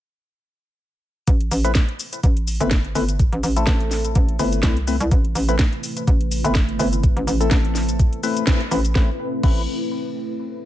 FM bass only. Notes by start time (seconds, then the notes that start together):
1.28 A1
1.51 A1
2.24 A1
2.61 G1
2.95 G1
3.33 A1
3.43 A1
3.67 A1
4.16 A1
4.39 G1
4.63 C2
5.01 C2
5.11 A1
5.35 A1
6.07 A1
6.45 G1
6.79 G1
7.17 A1
7.27 A1
7.51 A1
8.71 A1
8.95 A1
9.43 A1